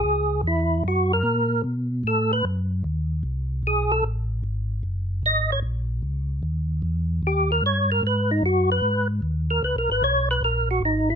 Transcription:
X:1
M:4/4
L:1/8
Q:"Swing" 1/4=150
K:F#mix
V:1 name="Tonewheel organ"
G2 E2 F A3 | z2 =A B z4 | z2 G =A z4 | z2 d c z4 |
z4 =G A c A | B D F B2 z2 A | (3B A B c B A F D E |]
V:2 name="Tonewheel organ" clef=bass
C,,2 E,,2 F,,2 A,,2 | B,,2 =A,,2 F,,2 D,,2 | ^B,,,2 =B,,,2 =A,,,2 G,,,2 | F,,,2 G,,,2 A,,,2 C,,2 |
D,,2 E,,2 D,,2 =G,,2 | G,,2 F,,2 G,,2 D,,2 | (3C,, B,,, G,,, B,,,2 A,,,2 G,,,2 |]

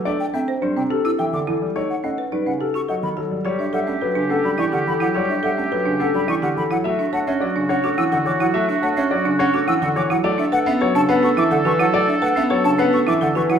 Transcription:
X:1
M:3/4
L:1/16
Q:1/4=106
K:Bphr
V:1 name="Flute"
e g e z2 g z e' g d' z2 | ^d f d z2 f z ^c' f b z2 | [K:Edor] z e f e z2 f b c' f b f | z e f e z2 f b c' f b f |
z e f e z2 f d' e' f d' f | z e f e z2 f d' e' f d' f | z e f e z a f c' d' f c' f | z e f e z a f c' d' f c' f |]
V:2 name="Grand piano"
d z g z c z A z e z A z | ^c z f z B z A z ^d z A z | [K:Edor] c z e z B z A z d z A z | c z e z B z A z d z A z |
e z a z d z c z f z c z | e z a z d z c z f z c z | d z f z c z B z e z B z | d z f z c z B z e z B z |]
V:3 name="Oboe"
z12 | z12 | [K:Edor] G12- | G8- G3 z |
F12- | F8- F3 z | A12- | A8- A3 z |]
V:4 name="Marimba"
D z C c D C G E A z E z | ^D z ^C B D C G F A z F z | [K:Edor] F D A C A D C F E G z E | F D A C A D C F E G z E |
F D c C c D C F E A z E | F D c C c D C F E A z E | F D B C B D C F E A F E | F D B C B D C F E A F E |]
V:5 name="Grand piano" clef=bass
A, z A, z G, C, z2 E, D, E, G, | A, z A, z G, ^C, z2 F, ^D, F, G, | [K:Edor] G, z G, A, F, C, A, G, E, D, E, F, | G, z G, A, F, C, A, G, E, D, E, F, |
A, z A, C F, C, C A, E, D, E, F, | A, z A, C F, C, C A, E, D, E, F, | A, z A, B, F, C, B, A, E, D, E, F, | A, z A, B, F, C, B, A, E, D, E, F, |]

